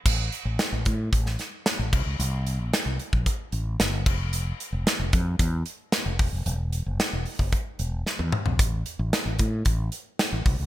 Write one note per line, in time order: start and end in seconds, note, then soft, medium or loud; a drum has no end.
0.06 0.28 A1 medium
0.06 kick loud
0.06 crash loud
0.32 closed hi-hat medium
0.45 0.57 A1 loud
0.59 snare loud
0.59 closed hi-hat medium
0.72 0.84 A1 loud
0.85 1.09 A2 medium
0.85 kick medium
0.85 closed hi-hat medium
1.13 1.35 A1 medium
1.13 kick loud
1.13 closed hi-hat medium
1.26 snare soft
1.39 snare soft
1.39 closed hi-hat medium
1.66 snare loud
1.66 closed hi-hat medium
1.79 1.91 A1 medium
1.93 2.04 C2 medium
1.93 kick loud
1.93 crash medium
2.06 2.17 C#2 medium
2.19 2.59 C2 medium
2.19 closed hi-hat loud
2.47 closed hi-hat medium
2.59 2.71 A#1 medium
2.73 snare loud
2.73 closed hi-hat medium
2.86 2.97 C2 medium
2.99 closed hi-hat medium
3.13 3.24 A#1 medium
3.13 kick medium
3.26 kick loud
3.26 closed hi-hat medium
3.52 3.75 A1 medium
3.52 closed hi-hat medium
3.79 4.06 G1 medium
3.79 snare loud
3.79 closed hi-hat medium
4.06 4.51 F1 loud
4.06 kick loud
4.06 crash medium
4.33 closed hi-hat loud
4.60 closed hi-hat medium
4.73 4.84 F1 medium
4.87 snare loud
4.87 closed hi-hat medium
5.00 5.11 F1 medium
5.13 5.36 F2 loud
5.13 kick loud
5.13 closed hi-hat medium
5.39 5.62 E2 loud
5.39 kick loud
5.39 closed hi-hat medium
5.66 closed hi-hat medium
5.92 snare loud
5.92 closed hi-hat medium
6.06 6.19 F1 medium
6.19 6.31 E1 loud
6.19 kick loud
6.19 open hi-hat medium
6.33 6.44 F1 medium
6.46 6.80 E1 loud
6.46 closed hi-hat medium
6.72 closed hi-hat medium
6.86 6.98 F#1 medium
7.00 snare loud
7.00 closed hi-hat medium
7.13 7.24 E1 medium
7.26 open hi-hat medium
7.39 7.51 F#1 medium
7.39 kick medium
7.52 kick loud
7.52 closed hi-hat medium
7.79 8.02 E1 medium
7.79 closed hi-hat medium
8.06 snare medium
8.19 8.31 E2 medium
8.19 high tom medium
8.32 mid tom loud
8.46 8.59 A#1 medium
8.46 floor tom medium
8.59 8.82 A1 medium
8.59 kick loud
8.59 closed hi-hat loud
8.86 closed hi-hat medium
8.99 9.11 A1 loud
9.13 snare loud
9.13 closed hi-hat loud
9.26 9.37 A1 medium
9.39 9.62 A2 medium
9.39 kick medium
9.39 closed hi-hat medium
9.65 9.88 A1 medium
9.65 kick loud
9.65 closed hi-hat medium
9.92 closed hi-hat medium
10.19 snare loud
10.19 closed hi-hat medium
10.33 10.44 A1 medium
10.46 10.57 C2 loud
10.46 kick loud
10.46 open hi-hat medium
10.59 10.66 C#2 medium